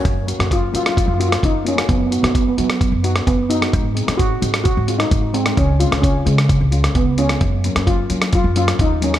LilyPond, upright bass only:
\new Staff \with { instrumentName = "Upright bass" } { \clef bass \time 4/4 \key fis \major \tempo 4 = 130 fis,8. fis,8. fis8. fis,8. fis,4 | fis,8. fis,8. fis8. fis,8. fis,4 | gis,8. gis,8. gis,8. gis,8. gis,4 | cis,8. cis,8. cis8. cis,8. cis,4 |
fis,8. fis,8. fis8. fis,8. dis,4 | }